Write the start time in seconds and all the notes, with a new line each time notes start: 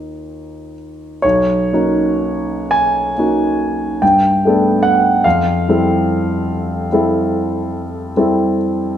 Already playing: D#2 A#3 D#4 F4 G4 D#5
1.22 B1 C#5
1.73 A#3 C#4 D#4 F#4
2.71 G#5
3.18 A#3 C#4 D#4 F#4
4.02 G2 G5
4.45 A3 B3 D4 A4
4.83 F#5
5.24 F2 F5
5.68 G3 C4 E4 A4
6.92 G3 C4 E4 A4
8.16 G3 C4 E4 A4